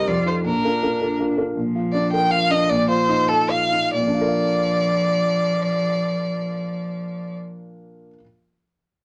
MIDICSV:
0, 0, Header, 1, 4, 480
1, 0, Start_track
1, 0, Key_signature, -2, "major"
1, 0, Tempo, 373367
1, 577, Time_signature, 3, 2, 24, 8
1, 3457, Tempo, 401070
1, 4417, Tempo, 442804
1, 10432, End_track
2, 0, Start_track
2, 0, Title_t, "Violin"
2, 0, Program_c, 0, 40
2, 98, Note_on_c, 0, 74, 111
2, 336, Note_off_c, 0, 74, 0
2, 350, Note_on_c, 0, 72, 83
2, 444, Note_off_c, 0, 72, 0
2, 578, Note_on_c, 0, 70, 104
2, 1518, Note_off_c, 0, 70, 0
2, 2471, Note_on_c, 0, 74, 102
2, 2704, Note_off_c, 0, 74, 0
2, 2728, Note_on_c, 0, 79, 115
2, 2967, Note_on_c, 0, 77, 127
2, 2986, Note_off_c, 0, 79, 0
2, 3222, Note_on_c, 0, 75, 124
2, 3242, Note_off_c, 0, 77, 0
2, 3460, Note_on_c, 0, 74, 127
2, 3478, Note_off_c, 0, 75, 0
2, 3689, Note_off_c, 0, 74, 0
2, 3699, Note_on_c, 0, 72, 127
2, 4165, Note_on_c, 0, 69, 127
2, 4183, Note_off_c, 0, 72, 0
2, 4430, Note_on_c, 0, 77, 127
2, 4446, Note_off_c, 0, 69, 0
2, 4884, Note_off_c, 0, 77, 0
2, 4891, Note_on_c, 0, 74, 127
2, 8606, Note_off_c, 0, 74, 0
2, 10432, End_track
3, 0, Start_track
3, 0, Title_t, "Grand piano"
3, 0, Program_c, 1, 0
3, 0, Control_c, 1, 64, 127
3, 0, Note_on_c, 1, 70, 62
3, 90, Note_on_c, 1, 41, 71
3, 122, Control_c, 1, 64, 0
3, 131, Note_off_c, 1, 70, 0
3, 320, Control_c, 1, 64, 127
3, 325, Note_off_c, 1, 41, 0
3, 327, Note_on_c, 1, 63, 53
3, 337, Note_on_c, 1, 65, 52
3, 341, Note_on_c, 1, 69, 61
3, 549, Note_off_c, 1, 63, 0
3, 554, Note_off_c, 1, 65, 0
3, 557, Note_off_c, 1, 69, 0
3, 572, Note_on_c, 1, 46, 70
3, 602, Control_c, 1, 64, 0
3, 811, Note_off_c, 1, 46, 0
3, 827, Note_on_c, 1, 62, 58
3, 829, Note_on_c, 1, 65, 54
3, 833, Note_on_c, 1, 70, 62
3, 837, Control_c, 1, 64, 127
3, 1041, Note_off_c, 1, 62, 0
3, 1042, Note_off_c, 1, 65, 0
3, 1045, Note_off_c, 1, 70, 0
3, 1065, Note_on_c, 1, 62, 63
3, 1070, Note_on_c, 1, 65, 57
3, 1070, Note_on_c, 1, 70, 65
3, 1278, Note_off_c, 1, 62, 0
3, 1281, Note_off_c, 1, 65, 0
3, 1281, Note_off_c, 1, 70, 0
3, 1298, Note_on_c, 1, 62, 49
3, 1303, Note_on_c, 1, 65, 48
3, 1310, Note_on_c, 1, 70, 56
3, 1511, Note_off_c, 1, 62, 0
3, 1514, Note_off_c, 1, 65, 0
3, 1518, Note_off_c, 1, 70, 0
3, 1535, Note_on_c, 1, 62, 49
3, 1542, Note_on_c, 1, 65, 54
3, 1550, Note_on_c, 1, 70, 61
3, 1747, Note_off_c, 1, 62, 0
3, 1749, Note_off_c, 1, 65, 0
3, 1751, Note_off_c, 1, 70, 0
3, 1766, Note_on_c, 1, 62, 55
3, 1768, Note_on_c, 1, 65, 60
3, 1771, Note_on_c, 1, 70, 68
3, 1982, Note_off_c, 1, 62, 0
3, 1984, Note_off_c, 1, 65, 0
3, 1985, Note_off_c, 1, 70, 0
3, 2012, Note_on_c, 1, 46, 74
3, 2038, Control_c, 1, 64, 0
3, 2223, Control_c, 1, 64, 127
3, 2256, Note_on_c, 1, 65, 65
3, 2493, Note_on_c, 1, 62, 69
3, 2637, Note_off_c, 1, 65, 0
3, 2744, Note_on_c, 1, 70, 63
3, 2878, Note_off_c, 1, 62, 0
3, 2973, Note_on_c, 1, 65, 84
3, 3125, Note_off_c, 1, 70, 0
3, 3219, Note_on_c, 1, 62, 78
3, 3361, Note_off_c, 1, 65, 0
3, 3416, Note_off_c, 1, 46, 0
3, 3460, Note_off_c, 1, 62, 0
3, 3463, Note_on_c, 1, 46, 98
3, 3485, Control_c, 1, 64, 0
3, 3690, Control_c, 1, 64, 127
3, 3690, Note_on_c, 1, 65, 93
3, 3932, Note_on_c, 1, 63, 97
3, 4070, Note_off_c, 1, 65, 0
3, 4173, Note_on_c, 1, 69, 83
3, 4320, Note_off_c, 1, 63, 0
3, 4419, Note_on_c, 1, 65, 79
3, 4561, Note_off_c, 1, 69, 0
3, 4665, Note_on_c, 1, 63, 73
3, 4801, Note_off_c, 1, 65, 0
3, 4859, Note_off_c, 1, 46, 0
3, 4896, Note_on_c, 1, 46, 77
3, 4902, Note_off_c, 1, 63, 0
3, 4925, Control_c, 1, 64, 0
3, 4972, Note_on_c, 1, 58, 76
3, 5049, Note_on_c, 1, 62, 65
3, 5122, Note_on_c, 1, 65, 71
3, 5140, Control_c, 1, 64, 127
3, 5200, Note_on_c, 1, 70, 77
3, 5277, Note_on_c, 1, 77, 76
3, 7810, Control_c, 1, 64, 0
3, 9367, Note_off_c, 1, 46, 0
3, 9405, Note_off_c, 1, 58, 0
3, 9444, Note_off_c, 1, 62, 0
3, 9480, Note_off_c, 1, 65, 0
3, 9519, Note_off_c, 1, 70, 0
3, 9558, Note_off_c, 1, 77, 0
3, 10432, End_track
4, 0, Start_track
4, 0, Title_t, "Cello"
4, 0, Program_c, 2, 42
4, 99, Note_on_c, 2, 65, 80
4, 576, Note_off_c, 2, 65, 0
4, 583, Note_on_c, 2, 62, 71
4, 1753, Note_off_c, 2, 62, 0
4, 2010, Note_on_c, 2, 53, 80
4, 4611, Note_off_c, 2, 53, 0
4, 4898, Note_on_c, 2, 53, 93
4, 8609, Note_off_c, 2, 53, 0
4, 10432, End_track
0, 0, End_of_file